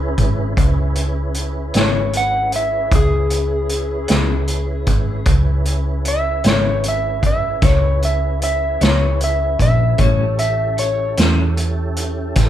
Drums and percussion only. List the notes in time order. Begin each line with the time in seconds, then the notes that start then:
0.18 kick, closed hi-hat
0.57 kick, closed hi-hat
0.95 closed hi-hat
1.34 closed hi-hat
1.74 snare, closed hi-hat
2.13 closed hi-hat
2.52 closed hi-hat
2.91 kick, closed hi-hat
3.30 closed hi-hat
3.69 closed hi-hat
4.08 snare, closed hi-hat
4.48 closed hi-hat
4.87 kick, closed hi-hat
5.25 kick, closed hi-hat
5.65 closed hi-hat
6.05 closed hi-hat
6.44 snare, closed hi-hat
6.84 closed hi-hat
7.23 kick, closed hi-hat
7.62 kick, snare, closed hi-hat
8.02 closed hi-hat
8.42 closed hi-hat
8.81 snare, closed hi-hat
9.21 closed hi-hat
9.60 kick, closed hi-hat
9.98 kick, closed hi-hat
10.39 closed hi-hat
10.78 closed hi-hat
11.17 snare, closed hi-hat
11.57 closed hi-hat
11.96 closed hi-hat
12.35 kick, snare, closed hi-hat